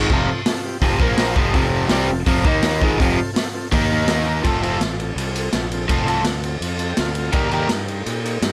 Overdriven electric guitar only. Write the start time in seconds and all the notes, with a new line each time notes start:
Already playing: D#3 G#3
0.11 F2 C3 F3
0.82 F2 C3 F3
1.00 A#2 F3 A#3
1.35 F2 C3 F3
1.54 F2 C3 F3
1.90 C3 G3 C4
2.10 F2 C3
2.27 F2 C3 F3
2.46 D#3 A#3 D#4
2.82 G#2 D#3 G#3
2.99 F2 C3 F3
3.72 D#3 A#3 D#4
4.43 F3 A3 C4 F4 A4
4.62 F3 A3 C4 F4 A4
5.88 F3 A3 C4 F4 A4
6.06 F3 A3 C4 F4 A4
7.33 D#3 G3 A#3 G4 A#4
7.51 D#3 G3 A#3 G4 A#4